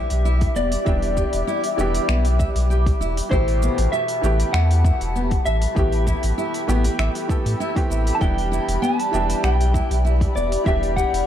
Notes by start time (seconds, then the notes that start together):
Already playing: E3 G3 B3 D4 E4 G4 E5 B5 D6
0.10 B1, open hi-hat, shaker
0.25 E4, shaker
0.41 kick, open hi-hat, shaker
0.55 E1 B3 D5, shaker
0.72 open hi-hat, shaker
0.85 E1 E3 G3 B3 D4 E5, kick, shaker
0.89 G4
1.02 open hi-hat
1.17 G4, kick, shaker
1.33 E1, open hi-hat, shaker
1.47 E4, shaker
1.64 open hi-hat, shaker
1.76 E1 E3 G3 B3 D4 E4, shaker
1.81 G4
1.94 open hi-hat, shaker
2.09 B1 B3, finger snap, shaker
2.25 open hi-hat, shaker
2.39 E5, kick, shaker
2.55 B1, open hi-hat, shaker
2.70 G4, shaker
2.86 kick, open hi-hat, shaker
3.00 E1 E4, shaker
3.17 open hi-hat, shaker
3.29 A1 B2 E3 A3 E4 G4 C5 A5, kick, shaker
3.48 open hi-hat
3.62 B3, shaker
3.78 A1, open hi-hat, shaker
3.92 E5, shaker
4.08 open hi-hat, shaker
4.21 A1 E3 A3 B3 G4, shaker
4.25 G4
4.40 open hi-hat, shaker
4.53 E2 E4 F#5, finger snap, shaker
4.71 open hi-hat, shaker
4.85 E4, kick, shaker
5.01 E1, open hi-hat, shaker
5.16 B3, shaker
5.31 kick, open hi-hat, shaker
5.45 A1 E5, shaker
5.62 open hi-hat, shaker
5.75 A1 E3 A3 B3 G4 G5, kick, shaker
5.92 open hi-hat
6.07 E4, kick, shaker
6.23 A1, open hi-hat, shaker
6.38 E4, shaker
6.54 open hi-hat, shaker
6.67 A1 E3 A3 B3 G4, shaker
6.84 open hi-hat, shaker
6.99 A1 E5, finger snap, shaker
7.15 open hi-hat, shaker
7.28 E3 A3 B3 G4 A4, kick, shaker
7.46 A2, open hi-hat, shaker
7.60 E4, shaker
7.75 E3 A3 B3 C4 G4, kick, open hi-hat, shaker
7.90 A1 E4, shaker
8.07 open hi-hat, shaker
8.15 E3 A5
8.20 E1 G3 B3 D4 E4 G4 D5 E5 G5, kick, shaker
8.38 open hi-hat
8.52 E4, shaker
8.68 E1, open hi-hat, shaker
8.82 B3 A5, shaker
9.00 open hi-hat, shaker
9.11 E1 E3 G3 B3 D4 G4 E5, shaker
9.30 open hi-hat, shaker
9.43 B1 G4 G5, finger snap, shaker
9.61 open hi-hat, shaker
9.74 E4, kick, shaker
9.91 B1, open hi-hat, shaker
10.05 E4, shaker
10.21 kick, open hi-hat, shaker
10.35 E1 B3 D5, shaker
10.52 open hi-hat, shaker
10.64 E1 E3 G3 B3 D4 G4 E5, kick, shaker
10.83 open hi-hat
10.96 G4 F#5, kick, shaker
11.13 E1, open hi-hat, shaker